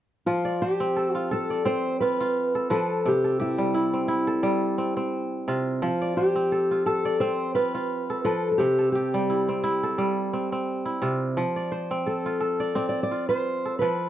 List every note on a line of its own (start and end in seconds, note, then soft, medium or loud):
0.26 2.61 F3 medium
0.26 0.62 F4 medium
0.45 1.50 D5 medium
0.62 1.15 G4 medium
0.62 1.80 C5 medium
0.80 1.65 C4 medium
0.96 1.31 A4 medium
1.15 1.32 F4 medium
1.15 2.01 F4 medium
1.31 2.55 A4 medium
1.31 1.66 A4 medium
1.50 2.61 D5 medium
1.65 2.76 C4 medium
1.65 2.00 C5 medium
2.01 2.20 F4 medium
2.01 2.71 B4 medium
2.21 3.72 F4 medium
2.55 3.24 A4 medium
2.70 3.10 F3 medium
2.70 3.06 A4 medium
2.70 3.93 B4 medium
3.06 5.40 C3 medium
3.06 3.39 G4 medium
3.24 4.27 A4 medium
3.40 5.45 E4 medium
3.40 4.81 G4 medium
3.58 4.42 G3 medium
3.74 4.08 E4 medium
3.94 4.78 C4 soft
4.08 5.54 E4 medium
4.27 5.59 A4 medium
4.43 5.87 G3 medium
4.78 4.96 C4 medium
4.97 6.35 C4 medium
5.48 5.87 C3 medium
5.48 6.71 F4 medium
5.82 8.16 F3 medium
5.82 6.16 F4 medium
6.01 7.05 D5 medium
6.17 6.82 G4 medium
6.17 7.36 C5 medium
6.35 7.20 C4 medium
6.52 6.86 A4 medium
6.71 7.55 F4 medium
6.86 7.20 A4 medium
6.86 8.09 A4 medium
7.05 8.16 D5 medium
7.20 8.31 C4 medium
7.20 7.54 C5 medium
7.55 7.74 F4 medium
7.55 8.20 B4 medium
7.75 9.26 F4 medium
8.10 8.78 A4 medium
8.25 8.65 F3 medium
8.25 8.50 A4 medium
8.25 9.48 B4 medium
8.51 8.59 A4 medium
8.58 10.94 C3 medium
8.58 8.91 G4 medium
8.79 9.83 A4 medium
8.92 10.97 G4 medium
8.92 10.36 G4 medium
9.14 9.97 G3 medium
9.30 9.63 E4 medium
9.49 10.33 C4 soft
9.64 10.85 E4 medium
9.83 11.15 A4 medium
9.98 11.42 G3 medium
10.33 10.52 C4 medium
10.52 11.90 C4 medium
10.85 11.43 E4 medium
11.02 11.42 C3 medium
11.02 12.25 F4 medium
11.37 13.71 F3 medium
11.56 12.59 D5 medium
11.72 12.90 C5 medium
11.91 12.75 C4 medium
12.06 12.40 A4 medium
12.06 12.72 A4 medium
12.26 13.11 F4 medium
12.40 13.65 A4 medium
12.60 13.71 D5 medium
12.75 13.88 C4 medium
12.75 12.88 D5 medium
12.89 13.02 D5 medium
13.03 13.28 D5 medium
13.11 13.29 F4 medium
13.29 14.09 F4 medium
13.29 13.78 C5 medium
13.65 14.09 A4 medium
13.79 14.09 F3 medium
13.79 14.09 B4 medium